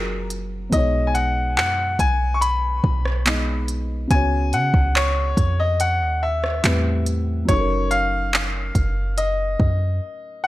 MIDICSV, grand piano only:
0, 0, Header, 1, 2, 480
1, 0, Start_track
1, 0, Key_signature, 6, "major"
1, 0, Tempo, 845070
1, 412, Time_signature, 4, 2, 24, 8
1, 5947, End_track
2, 0, Start_track
2, 0, Title_t, "Grand piano"
2, 0, Program_c, 0, 0
2, 0, Note_on_c, 0, 82, 98
2, 148, Note_off_c, 0, 82, 0
2, 415, Note_on_c, 0, 75, 87
2, 599, Note_off_c, 0, 75, 0
2, 608, Note_on_c, 0, 80, 67
2, 650, Note_off_c, 0, 80, 0
2, 650, Note_on_c, 0, 78, 88
2, 874, Note_off_c, 0, 78, 0
2, 892, Note_on_c, 0, 78, 92
2, 1115, Note_off_c, 0, 78, 0
2, 1135, Note_on_c, 0, 80, 98
2, 1331, Note_on_c, 0, 85, 73
2, 1339, Note_off_c, 0, 80, 0
2, 1371, Note_off_c, 0, 85, 0
2, 1371, Note_on_c, 0, 83, 99
2, 2069, Note_off_c, 0, 83, 0
2, 2333, Note_on_c, 0, 80, 109
2, 2577, Note_on_c, 0, 78, 95
2, 2579, Note_off_c, 0, 80, 0
2, 2798, Note_off_c, 0, 78, 0
2, 2817, Note_on_c, 0, 73, 91
2, 3179, Note_on_c, 0, 75, 86
2, 3185, Note_off_c, 0, 73, 0
2, 3287, Note_off_c, 0, 75, 0
2, 3297, Note_on_c, 0, 78, 100
2, 3538, Note_on_c, 0, 76, 83
2, 3542, Note_off_c, 0, 78, 0
2, 3992, Note_off_c, 0, 76, 0
2, 4251, Note_on_c, 0, 73, 96
2, 4492, Note_on_c, 0, 77, 100
2, 4499, Note_off_c, 0, 73, 0
2, 5212, Note_on_c, 0, 75, 84
2, 5233, Note_off_c, 0, 77, 0
2, 5909, Note_off_c, 0, 75, 0
2, 5928, Note_on_c, 0, 78, 89
2, 5947, Note_off_c, 0, 78, 0
2, 5947, End_track
0, 0, End_of_file